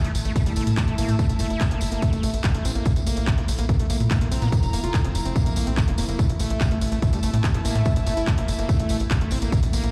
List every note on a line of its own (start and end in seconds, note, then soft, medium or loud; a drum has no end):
0.00 2.86 A3 medium
0.00 9.91 A3 medium
0.00 2.86 E4 loud
0.00 9.91 E4 medium
0.00 2.86 A5 medium
0.04 0.12 A1 medium
0.04 0.12 A3 medium
0.04 closed hi-hat medium
0.15 0.22 A1 medium
0.15 open hi-hat loud
0.15 tambourine medium
0.25 0.33 A1 medium
0.25 0.32 A3 loud
0.25 closed hi-hat medium
0.25 tambourine soft
0.36 0.43 A3 medium
0.36 kick loud
0.36 closed hi-hat medium
0.36 tambourine medium
0.45 0.53 A1 medium
0.45 0.53 G3 medium
0.45 2.86 E5 medium
0.45 closed hi-hat medium
0.45 tambourine soft
0.56 0.64 A1 loud
0.56 0.64 A3 loud
0.56 open hi-hat loud
0.56 tambourine loud
0.67 0.74 A2 medium
0.67 closed hi-hat medium
0.67 tambourine soft
0.77 0.84 G3 medium
0.77 kick loud
0.77 clap loud
0.77 closed hi-hat medium
0.77 tambourine medium
0.88 0.95 A1 medium
0.88 0.95 A3 medium
0.88 closed hi-hat medium
0.98 1.05 A1 loud
0.98 1.10 A#3 medium
0.98 open hi-hat loud
0.98 tambourine medium
1.09 1.16 A2 loud
1.09 1.16 A3 loud
1.09 closed hi-hat medium
1.09 tambourine soft
1.19 1.26 A3 medium
1.19 kick loud
1.19 closed hi-hat medium
1.19 tambourine medium
1.29 1.37 G1 medium
1.29 closed hi-hat medium
1.29 tambourine soft
1.39 1.47 G1 medium
1.39 1.47 A3 loud
1.39 open hi-hat loud
1.39 tambourine loud
1.50 1.57 G1 medium
1.50 1.60 E4 loud
1.50 closed hi-hat medium
1.50 tambourine soft
1.61 1.68 G3 medium
1.61 kick loud
1.61 clap loud
1.61 closed hi-hat medium
1.61 tambourine medium
1.71 1.78 G1 medium
1.71 1.81 A#3 medium
1.71 closed hi-hat medium
1.81 1.89 G1 loud
1.81 open hi-hat loud
1.81 tambourine medium
1.91 1.99 G1 medium
1.91 2.02 A#3 medium
1.91 closed hi-hat medium
1.91 tambourine soft
2.02 2.12 A3 medium
2.02 kick loud
2.02 closed hi-hat medium
2.02 tambourine medium
2.13 2.20 A1 medium
2.13 2.23 A3 medium
2.13 closed hi-hat medium
2.13 tambourine soft
2.23 2.30 A1 loud
2.23 2.30 A3 loud
2.23 open hi-hat loud
2.23 tambourine loud
2.34 2.41 A1 medium
2.34 closed hi-hat medium
2.34 tambourine soft
2.43 2.51 G3 medium
2.43 kick loud
2.43 clap loud
2.43 closed hi-hat medium
2.43 tambourine soft
2.54 2.62 A1 medium
2.54 2.64 A3 medium
2.54 closed hi-hat medium
2.65 2.72 A1 medium
2.65 2.72 C4 medium
2.65 open hi-hat loud
2.65 tambourine loud
2.75 2.83 A1 loud
2.75 2.85 A#3 medium
2.75 closed hi-hat medium
2.75 tambourine soft
2.85 kick loud
2.85 closed hi-hat medium
2.85 tambourine medium
2.96 3.03 A#1 medium
2.96 closed hi-hat medium
2.96 tambourine soft
3.07 3.14 A#1 loud
3.07 3.16 A#3 medium
3.07 open hi-hat loud
3.07 tambourine loud
3.16 3.24 A#1 medium
3.16 3.27 A#3 loud
3.16 closed hi-hat medium
3.16 tambourine soft
3.27 6.19 F3 medium
3.27 3.34 A3 medium
3.27 kick loud
3.27 clap loud
3.27 closed hi-hat medium
3.27 tambourine soft
3.38 3.45 A#1 medium
3.38 3.45 A#3 medium
3.38 closed hi-hat medium
3.48 3.55 A#1 loud
3.48 open hi-hat loud
3.48 tambourine loud
3.58 3.66 A#1 loud
3.58 3.66 A#3 loud
3.58 6.19 A#5 medium
3.58 closed hi-hat medium
3.58 tambourine soft
3.69 3.76 A#3 medium
3.69 kick loud
3.69 closed hi-hat medium
3.69 tambourine medium
3.79 3.87 A#1 medium
3.79 3.87 A3 medium
3.79 closed hi-hat medium
3.79 tambourine soft
3.90 3.97 A#1 loud
3.90 3.97 A#3 loud
3.90 open hi-hat loud
3.90 tambourine loud
4.00 4.08 A#2 medium
4.00 closed hi-hat medium
4.00 tambourine soft
4.11 4.18 A3 medium
4.11 kick loud
4.11 clap loud
4.11 closed hi-hat medium
4.11 tambourine soft
4.21 4.28 A#1 medium
4.21 4.28 A#3 medium
4.21 closed hi-hat medium
4.32 4.39 A#1 loud
4.32 4.43 C4 medium
4.32 open hi-hat loud
4.32 tambourine medium
4.42 4.49 A#2 medium
4.42 4.49 A#3 loud
4.42 closed hi-hat medium
4.42 tambourine soft
4.52 4.59 A#3 medium
4.52 kick loud
4.52 closed hi-hat medium
4.52 tambourine medium
4.63 4.70 F1 medium
4.63 closed hi-hat medium
4.63 tambourine soft
4.73 4.80 F1 loud
4.73 4.80 A#3 loud
4.73 open hi-hat loud
4.73 tambourine loud
4.84 4.91 F1 medium
4.84 4.94 F4 loud
4.84 closed hi-hat medium
4.84 tambourine soft
4.94 5.01 A3 medium
4.94 kick loud
4.94 clap loud
4.94 closed hi-hat medium
4.94 tambourine medium
5.04 5.12 F1 medium
5.04 5.14 C4 medium
5.04 closed hi-hat medium
5.15 5.22 F1 loud
5.15 open hi-hat loud
5.15 tambourine medium
5.25 5.33 F1 loud
5.25 5.35 C4 medium
5.25 closed hi-hat medium
5.25 tambourine soft
5.36 5.46 A#3 medium
5.36 kick loud
5.36 closed hi-hat medium
5.36 tambourine medium
5.46 5.53 A#1 medium
5.46 5.56 A#3 medium
5.46 closed hi-hat medium
5.46 tambourine soft
5.56 5.64 A#1 loud
5.56 5.66 A#3 loud
5.56 open hi-hat loud
5.56 tambourine loud
5.67 5.74 A#1 medium
5.67 5.77 C4 loud
5.67 closed hi-hat medium
5.67 tambourine soft
5.77 5.82 A#3 medium
5.77 kick loud
5.77 clap loud
5.77 closed hi-hat medium
5.77 tambourine medium
5.88 5.95 F1 medium
5.88 5.92 A#3 loud
5.88 closed hi-hat medium
5.98 6.05 F1 loud
5.98 6.05 A#3 medium
5.98 open hi-hat loud
5.98 tambourine loud
6.09 6.16 F1 medium
6.09 6.19 A#3 medium
6.09 closed hi-hat medium
6.09 tambourine soft
6.19 6.26 A3 medium
6.19 9.52 A3 medium
6.19 kick loud
6.19 closed hi-hat medium
6.19 tambourine medium
6.29 6.37 A1 medium
6.29 closed hi-hat medium
6.29 tambourine soft
6.39 6.47 A1 loud
6.39 6.50 A3 medium
6.39 9.52 A5 medium
6.39 open hi-hat loud
6.39 tambourine medium
6.50 6.57 A1 medium
6.50 6.60 A3 loud
6.50 closed hi-hat medium
6.50 tambourine soft
6.61 6.68 G3 medium
6.61 9.52 E4 medium
6.61 kick loud
6.61 clap loud
6.61 closed hi-hat medium
6.61 tambourine medium
6.71 6.78 A1 medium
6.71 6.78 A3 medium
6.71 closed hi-hat medium
6.81 6.89 A1 loud
6.81 open hi-hat loud
6.81 tambourine medium
6.92 6.99 A1 medium
6.92 6.99 A3 loud
6.92 closed hi-hat medium
6.92 tambourine soft
7.02 7.09 A3 medium
7.02 kick loud
7.02 closed hi-hat medium
7.02 tambourine soft
7.13 7.20 A1 medium
7.13 7.20 G3 medium
7.13 closed hi-hat medium
7.13 tambourine soft
7.22 7.30 A1 loud
7.22 7.30 A3 loud
7.22 9.52 E5 loud
7.22 open hi-hat loud
7.22 tambourine medium
7.33 7.41 A2 medium
7.33 7.38 A3 medium
7.33 closed hi-hat medium
7.33 tambourine soft
7.44 7.51 G3 medium
7.44 kick loud
7.44 clap loud
7.44 closed hi-hat medium
7.44 tambourine soft
7.54 7.62 A1 medium
7.54 7.62 A3 medium
7.54 closed hi-hat medium
7.65 7.72 A1 loud
7.65 7.77 A#3 medium
7.65 open hi-hat loud
7.65 tambourine loud
7.75 7.83 A2 loud
7.75 7.82 A3 loud
7.75 closed hi-hat medium
7.75 tambourine soft
7.85 7.93 A3 medium
7.85 kick loud
7.85 closed hi-hat medium
7.85 tambourine medium
7.96 8.03 G1 medium
7.96 closed hi-hat medium
7.96 tambourine soft
8.07 8.14 G1 loud
8.07 8.14 A3 loud
8.07 open hi-hat loud
8.07 tambourine medium
8.17 8.24 G1 medium
8.17 8.27 E4 loud
8.17 closed hi-hat medium
8.17 tambourine soft
8.27 8.34 G3 medium
8.27 kick loud
8.27 clap loud
8.27 closed hi-hat medium
8.27 tambourine soft
8.38 8.45 G1 medium
8.38 8.48 A#3 medium
8.38 closed hi-hat medium
8.48 8.55 G1 loud
8.48 open hi-hat loud
8.48 tambourine medium
8.59 8.66 G1 medium
8.59 8.69 A#3 medium
8.59 closed hi-hat medium
8.59 tambourine soft
8.69 8.79 A3 medium
8.69 kick loud
8.69 closed hi-hat medium
8.69 tambourine medium
8.79 8.87 A1 medium
8.79 8.89 A3 medium
8.79 closed hi-hat medium
8.79 tambourine soft
8.89 8.97 A1 loud
8.89 8.97 A3 loud
8.89 open hi-hat loud
8.89 tambourine medium
9.00 9.08 A1 medium
9.00 closed hi-hat medium
9.00 tambourine soft
9.11 9.18 G3 medium
9.11 kick loud
9.11 clap loud
9.11 closed hi-hat medium
9.11 tambourine medium
9.21 9.28 A1 medium
9.21 9.31 A3 medium
9.21 closed hi-hat medium
9.31 9.39 A1 medium
9.31 9.39 C4 medium
9.31 open hi-hat loud
9.31 tambourine medium
9.42 9.49 A1 medium
9.42 9.52 A#3 medium
9.42 closed hi-hat medium
9.42 tambourine soft
9.52 9.59 A#3 medium
9.52 kick loud
9.52 closed hi-hat medium
9.52 tambourine medium
9.63 9.70 A#1 medium
9.63 closed hi-hat medium
9.63 tambourine soft
9.73 9.80 A#1 medium
9.73 9.83 A#3 medium
9.73 open hi-hat loud
9.73 tambourine medium
9.84 9.91 A#1 medium
9.84 9.91 F3 loud
9.84 9.91 A#3 loud
9.84 closed hi-hat medium
9.84 tambourine soft